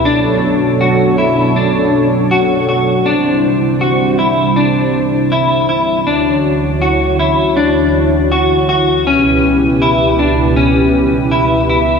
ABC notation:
X:1
M:4/4
L:1/8
Q:1/4=80
K:Bm
V:1 name="Clean electric guitar"
D2 F E D2 F F | D2 F E D2 E E | D2 F E D2 F F | C2 E D C2 E E |]
V:2 name="Analog synth pad"
[B,,F,DAc]8 | [=C,G,DE=c]8 | [D,,D,Fc]8 | [C,,B,,GB]8 |]